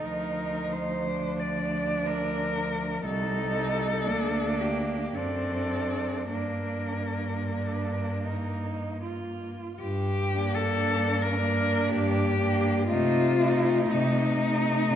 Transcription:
Already playing: D#4
0.06 D2 F3 A#4
0.72 C5
1.06 D4
1.39 D5
2.07 A#4
3.05 C2 G3 D#4 A4
4.06 D2 A#3 D4
4.61 G4
5.14 F#2 C4 D4 A4
6.31 G2 A#3 D4 A#4
7.46 D4
8.25 D#4
9.03 F4
9.80 G2 G4
10.35 A#3 D4
10.54 A4
10.89 G2
11.22 A#4
11.40 A#3 D4
11.90 G2 G4
12.40 A#3 D4
12.87 C3 A3 D#4 F4
13.40 A3 D#4
13.89 C3 D#4
14.37 A3 D#4
14.89 C3

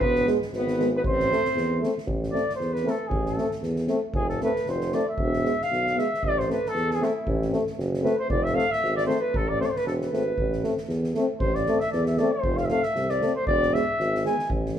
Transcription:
0.00 E1 B4, kick
0.04 B3
0.15 snare
0.26 G#3 B3, snare
0.42 snare
0.52 G#1 B4, snare
0.57 B3
0.67 snare
0.78 G#3 B3, snare
0.96 B3 B4
1.04 A1 C5, kick
1.11 C4
1.19 snare
1.30 A3 C4, snare
1.45 snare
1.55 E2, snare
1.81 A3 C4, snare
1.98 snare
2.06 A1, kick
2.23 snare
2.32 A3 C4 D5, snare
2.49 snare
2.56 E2 C5
2.60 snare
2.73 B4, snare
2.82 A3 C4
2.87 A4, snare
3.08 A1 G#4, kick
3.25 A4, snare
3.36 A3 C4, snare
3.51 snare
3.62 E2, snare
3.76 snare
3.87 A3 C4, snare
4.14 F1 G#4, kick
4.29 A4, snare
4.40 A3 C4 B4, snare
4.56 snare
4.66 F1 C5, snare
4.80 snare
4.92 A3 C4 D5, snare
5.09 E5
5.18 E1, kick
5.33 snare
5.43 G#3 B3, snare
5.61 F5, snare
5.70 B1, snare
5.86 snare
5.94 G#3 B3
5.98 E5, snare
6.14 snare
6.23 A1 D5, kick
6.39 C5, snare
6.47 A3 C4, snare
6.52 B4
6.65 A4, snare
6.74 E2, snare
6.90 G#4, snare
6.98 A3 C4, snare
7.04 E4
7.27 A1, kick
7.42 snare
7.50 A3 C4, snare
7.66 snare
7.77 F#1, snare
7.93 snare
8.02 A3 C4 B4, snare
8.19 C5
8.28 F1 D5, kick
8.43 E5, snare
8.54 A3 C4 F5
8.58 snare
8.71 E5, snare
8.82 G#1, snare
8.96 D5, snare
9.06 A3 C4 C5, snare
9.21 B4
9.34 A1 A4, kick
9.49 D5
9.59 A3 C4 C5, snare
9.65 D5
9.70 C5
9.76 B4, snare
9.85 E1 A4, snare
10.01 B4, snare
10.11 G#1 A3 C4, snare
10.37 A1, kick
10.52 snare
10.63 A3 C4, snare
10.77 snare
10.88 E2, snare
11.03 snare
11.14 A3 C4, snare
11.40 A1 C5, kick
11.54 D5, snare
11.66 A3 C4, snare
11.80 E5, snare
11.92 E2 D5, snare
12.06 E5, snare
12.17 A3 D5, snare
12.21 C4
12.32 C5
12.44 F1, kick
12.57 F5, snare
12.64 E5, snare
12.69 A3 C4 F5
12.82 E5, snare
12.95 C2, snare
13.09 D5, snare
13.21 A3 C4, snare
13.35 C5
13.47 E1 D5, kick
13.62 snare
13.73 G#3 B3 E5, snare
13.99 G#1, snare
14.14 snare
14.24 G#3 G#5, snare
14.28 B3
14.39 snare
14.49 A1, kick
14.65 snare
14.75 A3, snare

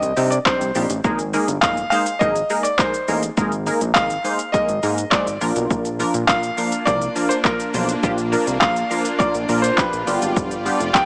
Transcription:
Already playing: D#5, downlifter
0.02 C2, closed hi-hat, shaker
0.16 C3 G3 C4 D4 D#4 G4, open hi-hat, shaker
0.30 D5, closed hi-hat, shaker
0.45 G3 C4 D4 D#4 G4 C5, kick, clap, shaker
0.61 C2, closed hi-hat, shaker
0.75 A#1 G3 C4 D4 D#4 G4, open hi-hat, shaker
0.90 A1, closed hi-hat, shaker
1.04 G#1 G#3 A#3 D#4 G#4 A#4, kick, shaker
1.19 closed hi-hat, shaker
1.33 G#3 A#3 D#4 G#4 A#4, open hi-hat, shaker
1.48 G1, closed hi-hat, shaker
1.61 G1 G#3 A#3 D#4 G#4 A#4 F5, kick, clap, shaker
1.77 closed hi-hat, shaker
1.90 G#3 A#3 D#4 G#4 C5 F5, open hi-hat, shaker
2.06 closed hi-hat, shaker
2.19 G#1 G#3 A#3 D#4 G#4 A#4 D#5, kick, shaker
2.36 closed hi-hat, shaker
2.50 G#3 A#3 D#4 G#4 A#4, open hi-hat, shaker
2.63 D5, closed hi-hat, shaker
2.78 G#3 A#3 D#4 G#4 A#4 C5, kick, clap, shaker
2.94 closed hi-hat, shaker
3.08 A1 G#3 A#3 D#4 G#4 A#4, open hi-hat, shaker
3.23 closed hi-hat, shaker
3.37 G#1 G#3 A#3 D#4 G#4 A#4, kick, shaker
3.52 closed hi-hat, shaker
3.66 G#3 A#3 D#4 G#4 A#4, open hi-hat, shaker
3.81 A#1, closed hi-hat, shaker
3.94 G#1 G#3 A#3 D#4 G#4 A#4 F5, kick, clap, shaker
4.10 closed hi-hat, shaker
4.24 G#3 A#3 D#4 G#4 C5, open hi-hat, shaker
4.39 closed hi-hat, shaker
4.52 G#3 A#3 D#4 G#4 A#4 D#5, kick, shaker
4.69 G#1, closed hi-hat, shaker
4.83 G#2 G#3 A#3 D#4 G#4 A#4, open hi-hat, shaker
4.98 closed hi-hat, shaker
5.10 G#3 A#3 D#4 G#4 C5 D5, kick, clap, shaker
5.27 G#1, closed hi-hat, shaker
5.41 A#1 F3 A#3 D4 F4 A#4, open hi-hat, shaker
5.56 B1, closed hi-hat, shaker
5.71 A#1 A#3 D4 F4, kick, shaker
5.85 closed hi-hat, shaker
5.99 F3 A#3 D4 F4 A#4, open hi-hat, shaker
6.14 A#1, closed hi-hat, shaker
6.27 A#1 F3 A#3 D4 F4 A#4 F5, kick, clap, shaker
6.43 closed hi-hat, shaker
6.57 F3 A#3 D4 F4 A#4, open hi-hat, shaker
6.72 closed hi-hat, shaker
6.85 C2 F3 A#3 D4 F4 A#4 D5, kick, shaker
7.02 closed hi-hat, shaker
7.16 F3 A#3 D4 F4 A#4, open hi-hat, shaker
7.29 C5, closed hi-hat, shaker
7.44 F3 A#3 D4 F4 A#4, kick, clap, shaker
7.60 closed hi-hat, shaker
7.74 B1 F3 A#3 D4 F4 C5, open hi-hat, shaker
7.89 closed hi-hat, shaker
8.03 A#1 F3 A#3 D4 F4 G4, kick, shaker
8.18 closed hi-hat, shaker
8.32 F3 A#3 D4 F4 A#4, open hi-hat, shaker
8.47 C2, closed hi-hat, shaker
8.60 A#1 F3 A#3 D4 F4 A#4 F5, kick, clap, shaker
8.76 closed hi-hat, shaker
8.90 F3 A#3 D4 F4 A#4, open hi-hat, shaker
9.05 closed hi-hat, shaker
9.19 F3 A#3 D4 F4 A#4 D5, kick, shaker
9.35 A#1, closed hi-hat, shaker
9.48 A#2 F3 A#3 D4 F4 A#4, open hi-hat, shaker
9.62 C5, closed hi-hat, shaker
9.77 F3 A#3 D4 F4 G4 B4, kick, clap, shaker
9.93 A#1, closed hi-hat, shaker
10.07 G1 G3 B3 D4 F4 G4 D5, open hi-hat, shaker
10.22 G#1, closed hi-hat, shaker
10.37 G1, kick, shaker
10.51 closed hi-hat, shaker
10.65 G3 B3 D4 F4 G4, open hi-hat, shaker
10.80 F1, closed hi-hat, shaker
10.93 F1 G3 B3 D4 F4 G4 G5, kick, clap, shaker

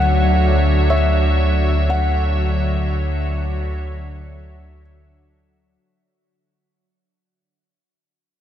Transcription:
Already playing: D2 D3 F#3 D4 F#4 C#5 E5 F#5 G#5
0.90 C#5 E5
1.90 F#5

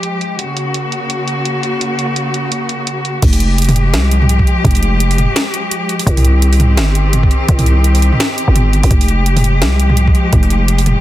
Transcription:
Already playing: F3 G#3 G4
0.03 closed hi-hat
0.21 closed hi-hat
0.38 C#3 A#3 F#4, closed hi-hat
0.57 closed hi-hat
0.74 closed hi-hat
0.92 closed hi-hat
1.10 closed hi-hat
1.28 closed hi-hat
1.45 closed hi-hat
1.63 closed hi-hat
1.81 closed hi-hat
1.99 closed hi-hat
2.16 closed hi-hat
2.34 closed hi-hat
2.52 closed hi-hat
2.69 closed hi-hat
2.87 closed hi-hat
3.05 closed hi-hat
3.22 F1 F3 G#3 G4, kick, closed hi-hat, mid tom, crash
3.33 open hi-hat
3.40 closed hi-hat
3.58 closed hi-hat
3.62 closed hi-hat
3.64 closed hi-hat
3.69 mid tom, open hi-hat
3.76 closed hi-hat
3.93 C2, snare, closed hi-hat
4.11 closed hi-hat
4.22 mid tom
4.29 closed hi-hat
4.39 kick
4.47 closed hi-hat
4.64 F1, kick, closed hi-hat, mid tom
4.71 closed hi-hat
4.75 closed hi-hat, open hi-hat
4.83 closed hi-hat
5.00 closed hi-hat
5.11 open hi-hat
5.18 closed hi-hat, mid tom
5.36 snare, closed hi-hat
5.54 closed hi-hat
5.71 closed hi-hat
5.89 closed hi-hat
5.99 open hi-hat
6.06 C2 D#3 C4 G4, kick, closed hi-hat
6.17 mid tom, open hi-hat
6.25 closed hi-hat
6.42 closed hi-hat
6.53 open hi-hat
6.60 closed hi-hat, mid tom
6.77 G1, snare, closed hi-hat
6.95 closed hi-hat
7.13 closed hi-hat, mid tom
7.23 kick
7.31 closed hi-hat
7.49 C2, kick, closed hi-hat
7.59 mid tom, open hi-hat
7.66 closed hi-hat
7.84 closed hi-hat
7.95 open hi-hat
8.02 closed hi-hat
8.13 mid tom
8.20 snare, closed hi-hat
8.38 closed hi-hat
8.48 G1
8.56 closed hi-hat, mid tom
8.73 closed hi-hat
8.83 G1, open hi-hat
8.91 F1 F3 G#3, kick, closed hi-hat, mid tom
9.01 open hi-hat
9.08 closed hi-hat
9.26 closed hi-hat
9.37 mid tom, open hi-hat
9.44 closed hi-hat
9.62 C2, snare, closed hi-hat
9.80 closed hi-hat
9.90 mid tom
9.97 closed hi-hat
10.07 kick
10.15 closed hi-hat
10.33 F1, kick, closed hi-hat, mid tom
10.43 open hi-hat
10.50 closed hi-hat
10.68 closed hi-hat
10.78 open hi-hat
10.86 closed hi-hat, mid tom

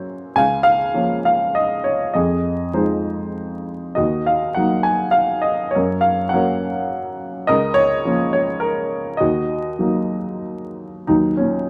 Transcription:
Already playing: F#2 F#3 A#3 C#4 F#4 A#4 C5 C#5
0.36 C#2 F5 G#5
0.63 F5
0.94 F3 A#3 C#4
1.25 F5
1.55 D#5
1.84 C#5
2.14 F2 G#4 D#5
2.73 F3 G#3 D#4 G#4 C5
3.95 D#2 F#4 D#5
4.26 F5
4.54 F#3 A#3 D#4 F#5
4.83 G#5
5.11 F5
5.42 D#5
5.71 C#5
5.75 F#2 A#4
6.01 F5
6.29 F#5
6.33 F#3 A#3 C#4 A#4
7.47 C#2 A#4 D#5
7.74 C#5
8.05 F3 A#3 C#4
8.33 C#5
8.60 A#4
9.17 D#2 F#4 D#5
9.79 F#3 A#3 D#4
11.07 D#2 F#3 D#4
11.37 A#2 C#4

